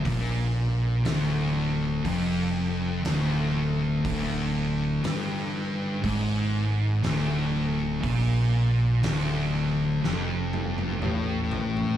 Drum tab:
HH |o---o---o---o---|o---o---o---o---|o---o-----------|
SD |----o-------o---|----o-------o---|----o---o-------|
T1 |----------------|----------------|----------oo----|
T2 |----------------|----------------|------------o---|
FT |----------------|----------------|--------------oo|
BD |o-------o-------|o-------o-------|o---------------|